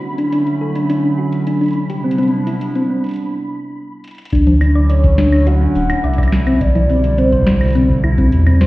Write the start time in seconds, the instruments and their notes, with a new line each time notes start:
Already playing: ambient pad D3 F#3 A3 C#4 E4, synth texture B5
0.18 synth arpeggio sound D4, closed hi-hat
0.32 synth arpeggio sound D4, closed hi-hat
0.47 closed hi-hat
0.61 synth arpeggio sound A4
0.75 synth arpeggio sound D4, closed hi-hat
0.90 synth arpeggio sound D4, closed hi-hat
1.18 synth arpeggio sound F#4
1.32 closed hi-hat
1.47 synth arpeggio sound D4, closed hi-hat
1.61 synth arpeggio sound D4, closed hi-hat
1.63 closed hi-hat
1.66 closed hi-hat
1.68 closed hi-hat
1.71 closed hi-hat
1.73 ambient pad C3 G3 B3 D4 E4, closed hi-hat
1.90 synth arpeggio sound G4, closed hi-hat
2.04 synth arpeggio sound C4
2.11 closed hi-hat
2.18 synth arpeggio sound C4, closed hi-hat
2.23 closed hi-hat
2.28 closed hi-hat
2.47 synth arpeggio sound E4, closed hi-hat
2.61 closed hi-hat
2.75 synth arpeggio sound C4, closed hi-hat
2.90 synth arpeggio sound C4
3.04 closed hi-hat
3.06 closed hi-hat
3.09 closed hi-hat
3.11 closed hi-hat
3.14 closed hi-hat
3.16 closed hi-hat
4.04 closed hi-hat
4.08 closed hi-hat
4.11 closed hi-hat
4.15 closed hi-hat
4.18 closed hi-hat
4.22 closed hi-hat
4.25 closed hi-hat
4.29 sub bass D2, ambient pad D3 F#3 A3 C#4 E4, kick, closed hi-hat
4.33 synth arpeggio sound D4, closed hi-hat
4.35 closed hi-hat
4.47 closed hi-hat, low conga
4.61 synth arpeggio sound D4, open hi-hat, high woodblock
4.75 synth arpeggio sound D5
4.90 soft synth lead C#5, synth arpeggio sound D5, closed hi-hat
5.04 kick, closed hi-hat
5.18 synth arpeggio sound D4, snare
5.32 closed hi-hat, high woodblock
5.47 synth arpeggio sound F#4, soft synth lead F#5, closed hi-hat
5.61 synth arpeggio sound D4
5.75 sub bass D1, open hi-hat
5.90 synth arpeggio sound D4, closed hi-hat, high woodblock
6.04 sub bass C2, synth arpeggio sound D5, soft synth lead E5, closed hi-hat
6.13 closed hi-hat
6.18 synth arpeggio sound D5, kick, closed hi-hat, high woodblock
6.23 closed hi-hat, high woodblock
6.28 high woodblock
6.32 ambient pad B2 C3 D3 G3, snare
6.47 synth arpeggio sound C4, closed hi-hat, high woodblock
6.61 sub bass C2, soft synth lead D5, kick, closed hi-hat
6.75 synth arpeggio sound E4, closed hi-hat, low conga
6.90 synth arpeggio sound C4, open hi-hat
7.04 closed hi-hat
7.18 synth arpeggio sound C4, soft synth lead C5, closed hi-hat
7.32 synth arpeggio sound C5, kick, closed hi-hat
7.42 kick
7.47 synth arpeggio sound C5, snare
7.51 kick
7.61 closed hi-hat, high woodblock
7.63 closed hi-hat
7.66 closed hi-hat
7.68 closed hi-hat
7.70 closed hi-hat
7.73 closed hi-hat
7.75 synth arpeggio sound C4, closed hi-hat
7.90 kick
8.04 sub bass C2, synth arpeggio sound E4, high woodblock
8.18 synth arpeggio sound C4, kick, closed hi-hat
8.32 sub bass E2, closed hi-hat
8.47 synth arpeggio sound C4, closed hi-hat, high woodblock
8.61 synth arpeggio sound C5, snare